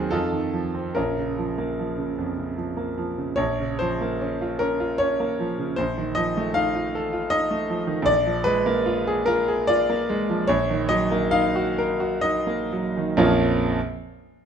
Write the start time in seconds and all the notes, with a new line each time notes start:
Already playing: D#2 D#3 F#3 C4 D#4 F#4 G#4 A#4
0.11 F2 D#4 F4 A4
0.32 D#3
0.53 F3
0.75 C4
0.95 A#1 C#4 F4 A#4
1.18 C#3
1.38 F3
1.58 A#3
1.79 F3
1.98 C#3
2.18 F2
2.38 C#3
2.58 F3
2.77 A#3
2.98 F3
3.18 C#3
3.36 A#1 C#5
3.60 C#3
3.79 F3 C5
4.01 A#3
4.21 C#4
4.41 F4
4.59 C#4 A#4
4.80 F4
4.98 C#4 C#5
5.20 A#3
5.40 F3
5.59 C#3
5.76 A#1 C5
5.98 D#3
6.15 F3 D#5
6.37 A3
6.54 D#4 F5
6.75 F4
6.95 A4
7.13 F4
7.30 D#4 D#5
7.51 A3
7.70 F3
7.87 D#3
8.02 A#1 D5
8.26 F3
8.44 G#3 B4
8.66 A#3
8.86 F4
9.07 G#4
9.26 F4 A#4
9.48 G#4
9.67 F4 D5
9.90 A#3
10.10 G#3
10.30 F3
10.47 A#1 C#5
10.70 D#3
10.89 F#3 D#5
11.11 A#3
11.31 D#4 F5
11.56 F#4
11.78 A#4
12.00 F#4
12.21 D#4 D#5
12.47 A#3
12.73 F#3
12.97 D#3
13.17 A#1 F2 F3 A#3 C#4 F4 C#5